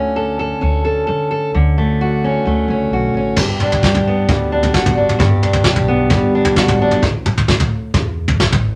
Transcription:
0.00 0.52 D2 medium
0.00 1.51 D3 medium
0.00 1.54 A3 medium
0.00 0.61 C#4 soft
0.16 0.39 A4 medium
0.39 0.83 A4 medium
0.61 1.03 D2 medium
0.61 2.22 C#4 medium
0.85 1.06 A4 medium
1.07 1.49 D3 medium
1.07 1.30 A4 medium
1.31 1.51 A4 medium
1.54 2.36 D2 medium
1.54 3.35 D3 medium
1.78 2.46 A3 soft
2.01 2.92 F#4 soft
2.24 2.69 C#4 soft
2.45 2.66 D2 medium
2.45 3.38 A3 soft
2.68 2.89 C#2 medium
2.68 3.15 C#4 medium
2.90 3.11 B1 medium
2.90 3.38 F#4 soft
3.14 3.35 A1 medium
3.14 3.38 C#4 soft
3.36 3.78 G1 medium
3.36 5.17 G2 medium
3.36 3.84 G4 medium
3.36 kick medium
3.36 floor tom medium
3.36 crash medium
3.60 4.51 D4 medium
3.60 mid tom medium
3.72 floor tom medium
3.83 4.24 G2 medium
3.83 4.74 G4 medium
3.83 kick loud
3.83 snare medium
3.94 floor tom medium
4.07 5.88 B3 medium
4.29 4.70 D2 medium
4.29 5.18 G3 medium
4.29 kick medium
4.29 floor tom medium
4.52 4.96 D4 medium
4.63 floor tom medium
4.74 5.15 G1 medium
4.74 5.19 F#4 medium
4.74 kick medium
4.74 snare medium
4.86 floor tom medium
4.86 mid tom medium
4.97 5.17 D4 soft
5.09 mid tom medium
5.19 5.61 G1 medium
5.19 6.99 G2 medium
5.19 5.64 G4 medium
5.19 kick medium
5.19 floor tom medium
5.43 6.34 D4 medium
5.43 mid tom medium
5.53 floor tom medium
5.64 6.06 B1 medium
5.64 6.57 G4 medium
5.64 kick loud
5.64 snare medium
5.76 floor tom medium
5.88 7.00 B3 medium
6.10 6.52 G1 medium
6.10 7.00 G3 medium
6.10 kick loud
6.10 floor tom medium
6.35 6.80 D4 medium
6.45 floor tom medium
6.56 6.98 G1 medium
6.56 7.03 F#4 medium
6.56 kick medium
6.56 snare medium
6.68 floor tom medium
6.68 mid tom medium
6.82 7.01 D4 medium
6.91 mid tom medium
7.02 7.43 A1 loud
7.02 kick medium
7.02 floor tom medium
7.26 mid tom medium
7.38 floor tom medium
7.48 7.89 A2 loud
7.48 kick loud
7.48 snare medium
7.60 floor tom medium
7.94 8.35 E2 loud
7.94 kick loud
7.94 floor tom medium
8.28 floor tom medium
8.40 8.75 A1 medium
8.40 kick loud
8.40 snare medium
8.52 floor tom medium
8.52 mid tom medium

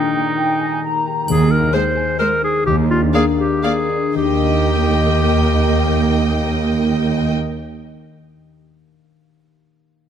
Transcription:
0.00 1.28 D#3 soft
0.00 0.81 D#4 soft
0.00 1.04 D#4 soft
0.00 0.31 G5 soft
0.13 1.31 A#3 soft
0.36 1.51 D#4 soft
0.36 0.58 G5 soft
0.59 1.05 G4 soft
0.59 0.83 G#5 soft
0.83 1.31 A#4 soft
0.83 1.29 A#5 soft
1.06 1.31 G4 soft
1.28 1.66 D#2 medium
1.28 1.66 D#2 soft
1.28 2.65 D#3 soft
1.28 1.53 G#4 medium
1.28 triangle soft
1.51 2.41 D#4 soft
1.51 1.76 A#4 medium
1.73 1.82 G#3 soft
1.73 2.18 G#4 soft
1.73 1.81 C5 soft
1.73 2.18 C5 medium
1.73 1.82 C5 soft
1.96 4.17 G#5 soft
2.19 2.28 G#3 soft
2.19 4.17 G#4 soft
2.19 2.42 A#4 medium
2.19 2.27 C5 soft
2.19 2.28 C5 soft
2.43 2.68 D#4 soft
2.43 2.65 G#4 medium
2.66 3.05 D#2 medium
2.66 3.06 D#2 soft
2.66 4.13 D#3 soft
2.66 2.76 G4 medium
2.89 3.88 D4 soft
2.89 3.01 F4 medium
3.13 3.21 A#3 soft
3.13 3.25 G#4 medium
3.13 3.61 A#4 soft
3.13 3.22 D5 soft
3.13 3.22 F5 soft
3.38 3.65 G4 medium
3.38 4.17 F5 soft
3.63 3.71 A#3 soft
3.63 4.15 G#4 medium
3.63 7.30 A#4 soft
3.63 3.72 D5 soft
3.63 3.71 F5 soft
3.89 4.17 D4 soft
4.14 7.31 D#2 soft
4.14 8.04 D#3 soft
4.14 7.32 A#3 soft
4.14 7.33 G4 soft
4.14 7.32 D#5 soft
4.14 7.33 G5 soft
4.22 7.43 A#3 soft
4.28 7.45 D#4 soft
4.36 7.52 G4 soft
4.43 7.59 D#5 soft

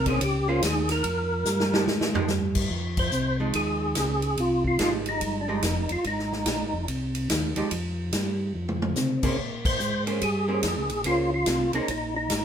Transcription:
0.00 0.20 C2 loud
0.06 0.20 A#3 medium
0.06 0.20 C#4 medium
0.06 0.20 G#4 medium
0.06 0.21 G#4 medium
0.06 0.20 C5 medium
0.06 kick medium
0.06 ride medium
0.21 0.61 C#2 medium
0.21 0.48 G4 medium
0.21 kick soft
0.21 ride medium
0.48 0.61 A#3 medium
0.48 0.61 C#4 medium
0.48 0.63 F4 medium
0.48 0.62 G#4 medium
0.48 0.62 C5 medium
0.62 1.03 D#2 loud
0.62 0.90 G#4 medium
0.62 kick soft
0.62 snare medium
0.62 hi-hat pedal medium
0.62 ride medium
0.89 1.85 A#4 medium
0.89 snare soft
0.89 ride medium
1.04 1.45 F2 medium
1.04 kick soft
1.04 ride medium
1.45 1.86 G2 loud
1.45 snare soft
1.45 hi-hat pedal medium
1.60 snare medium
1.73 1.86 F3 medium
1.73 1.86 G#3 medium
1.73 1.87 D#4 medium
1.73 1.87 G4 medium
1.73 snare medium
1.87 2.28 G#2 medium
1.87 snare medium
2.01 snare medium
2.14 2.28 F3 medium
2.14 2.28 G#3 medium
2.14 2.28 D#4 medium
2.14 2.28 G4 medium
2.14 floor tom loud
2.28 2.69 G2 loud
2.28 snare medium
2.28 hi-hat pedal medium
2.55 kick medium
2.55 crash medium
2.70 3.11 F2 medium
2.70 kick soft
2.97 3.37 C5 medium
2.97 kick medium
2.97 crash medium
3.11 3.53 C2 medium
3.11 hi-hat pedal medium
3.40 3.93 F3 medium
3.40 3.93 G#3 medium
3.40 3.94 D#4 medium
3.53 3.94 D#2 medium
3.53 4.41 G#4 medium
3.53 kick soft
3.53 ride medium
3.95 4.36 C#2 loud
3.95 kick soft
3.95 snare medium
3.95 hi-hat pedal medium
3.95 ride medium
4.22 ride soft
4.37 4.78 C2 medium
4.37 4.64 F4 medium
4.37 kick soft
4.37 ride medium
4.64 4.81 F4 medium
4.64 kick soft
4.79 5.20 G#1 medium
4.79 5.43 F3 medium
4.79 5.43 G#3 medium
4.79 5.43 D#4 medium
4.79 4.93 F4 medium
4.79 5.43 G4 medium
4.79 kick soft
4.79 snare medium
4.79 hi-hat pedal soft
4.79 ride medium
5.06 5.41 D#4 medium
5.06 ride soft
5.21 5.62 G1 medium
5.21 kick soft
5.21 ride medium
5.41 5.49 D4 medium
5.48 5.61 F3 medium
5.48 5.61 G#3 medium
5.48 5.62 D#4 medium
5.48 5.91 D#4 medium
5.48 5.62 G4 medium
5.62 5.87 F1 loud
5.62 kick soft
5.62 snare medium
5.62 hi-hat pedal medium
5.62 ride medium
5.89 5.97 F1 soft
5.89 6.05 F4 medium
5.89 ride soft
6.04 6.45 G#1 medium
6.04 6.85 D#4 medium
6.04 kick soft
6.04 ride soft
6.19 snare soft
6.33 snare soft
6.46 6.60 A#1 medium
6.46 kick soft
6.46 snare medium
6.46 hi-hat pedal soft
6.46 ride medium
6.60 6.74 G#1 medium
6.73 6.87 F1 medium
6.88 7.28 C2 medium
6.88 kick soft
6.88 ride medium
7.15 ride soft
7.29 7.54 D#2 medium
7.29 kick soft
7.29 snare medium
7.29 hi-hat pedal medium
7.29 ride medium
7.56 7.63 D#2 soft
7.56 7.70 F3 medium
7.56 7.70 G#3 medium
7.56 7.70 D#4 medium
7.56 7.70 G4 medium
7.56 ride soft
7.71 8.12 F2 medium
7.71 kick soft
7.71 ride medium
8.12 8.53 G2 loud
8.12 kick soft
8.12 snare medium
8.12 hi-hat pedal medium
8.12 ride medium
8.55 8.95 F2 medium
8.69 mid tom medium
8.82 mid tom medium
8.96 9.37 C3 medium
8.96 snare medium
8.96 hi-hat pedal medium
9.23 9.37 A#3 medium
9.23 9.37 C#4 medium
9.23 9.37 G#4 medium
9.23 9.37 C5 medium
9.23 kick medium
9.23 crash medium
9.38 9.78 A#2 medium
9.38 kick soft
9.65 10.04 C5 loud
9.65 kick medium
9.65 crash medium
9.80 10.20 G#2 medium
9.80 hi-hat pedal medium
10.06 10.20 A#3 medium
10.06 10.20 C#4 medium
10.06 10.20 G#4 medium
10.06 10.20 C5 medium
10.06 ride soft
10.21 10.62 G2 medium
10.21 11.02 G#4 medium
10.21 kick soft
10.21 ride medium
10.48 10.62 A#3 medium
10.48 10.62 C#4 medium
10.48 10.62 G#4 medium
10.48 10.62 C5 medium
10.63 10.77 F2 medium
10.63 kick soft
10.63 snare medium
10.63 hi-hat pedal medium
10.63 ride medium
10.77 10.91 C#2 medium
10.89 11.04 A#1 medium
10.89 ride medium
11.04 11.45 C#2 medium
11.04 11.29 A#3 medium
11.04 11.29 C#4 medium
11.04 11.31 F4 loud
11.04 11.29 G#4 medium
11.04 11.30 C5 medium
11.04 kick soft
11.04 ride medium
11.34 11.72 F4 medium
11.46 11.71 C2 medium
11.46 kick soft
11.46 snare medium
11.46 hi-hat pedal medium
11.46 ride medium
11.73 11.81 C2 soft
11.73 11.87 A#3 medium
11.73 11.87 C#4 medium
11.73 11.90 D#4 medium
11.73 11.88 G#4 medium
11.73 11.88 C5 medium
11.73 ride soft
11.88 12.29 A#1 medium
11.88 12.15 D#4 medium
11.88 kick soft
11.88 ride medium
12.16 12.45 D#4 medium
12.30 12.45 G#1 medium
12.30 kick soft
12.30 snare medium
12.30 hi-hat pedal medium
12.30 ride medium

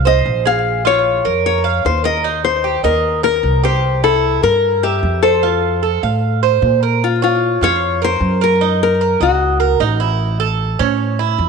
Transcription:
0.00 0.21 C2 medium
0.05 0.44 C5 medium
0.05 0.43 D#5 loud
0.26 1.19 A#1 medium
0.46 0.84 G#4 medium
0.46 0.83 F5 loud
0.85 1.24 F4 medium
0.85 1.45 C#5 loud
1.25 1.80 F2 medium
1.25 1.63 A#4 medium
1.46 1.85 C#5 loud
1.64 2.03 F5 medium
1.85 2.78 D#2 medium
1.85 2.04 C5 medium
2.04 2.24 A#4 medium
2.04 2.44 D#5 loud
2.24 2.63 D#4 medium
2.45 2.81 C5 medium
2.64 2.83 G4 medium
2.83 3.39 D#2 medium
2.83 3.23 A#4 loud
2.83 3.23 D#5 medium
3.23 3.62 A#4 medium
3.23 3.64 A#4 loud
3.43 4.37 C2 medium
3.64 4.02 G4 medium
3.64 4.01 C5 medium
4.04 4.42 E4 medium
4.04 4.43 A4 medium
4.43 4.98 G2 medium
4.43 4.82 A#4 medium
4.43 4.84 A#4 medium
4.83 5.24 G4 medium
4.83 5.22 E5 medium
5.03 5.96 F2 medium
5.23 6.58 A4 medium
5.23 5.42 C5 medium
5.43 5.81 F4 medium
5.83 6.02 A4 medium
6.03 6.58 A2 medium
6.03 6.41 F5 medium
6.43 6.81 C5 medium
6.62 7.55 A#2 medium
6.83 7.01 A#4 medium
7.04 7.22 F4 medium
7.22 7.63 F4 medium
7.22 7.60 C#5 medium
7.61 8.17 F2 medium
7.61 8.01 F4 medium
7.61 8.00 C#5 loud
8.02 8.40 A#4 medium
8.02 8.43 C5 loud
8.21 9.14 F#2 medium
8.41 8.60 A#4 medium
8.41 8.82 A#4 medium
8.61 9.00 D#4 medium
8.83 9.19 A#4 medium
9.01 9.20 A#4 medium
9.20 9.76 C#2 medium
9.20 9.77 F#4 medium
9.20 9.59 D#5 medium
9.60 9.79 A#4 medium
9.80 10.73 A1 medium
9.80 9.99 D#4 medium
10.00 10.39 E4 medium
10.40 10.78 A4 medium
10.79 11.35 A2 medium
10.79 11.18 C#4 medium
11.19 11.49 E4 medium
11.38 11.49 F2 medium

